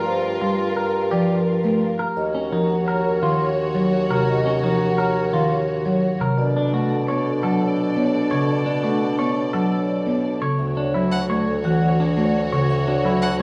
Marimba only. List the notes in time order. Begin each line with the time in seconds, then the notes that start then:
0.41 G3
1.12 F3
1.64 A3
2.52 F3
3.22 D#3
3.75 F#3
4.10 C3
4.63 F3
5.33 D#3
5.86 F#3
6.21 C3
6.73 A3
7.09 B3
7.44 F#3
7.96 B3
8.32 C#3
8.84 A3
9.19 B3
9.54 F#3
10.06 B3
10.42 C#3
10.95 F#3
11.30 A3
11.64 E3
12.17 A3
12.52 C#3
13.05 F#3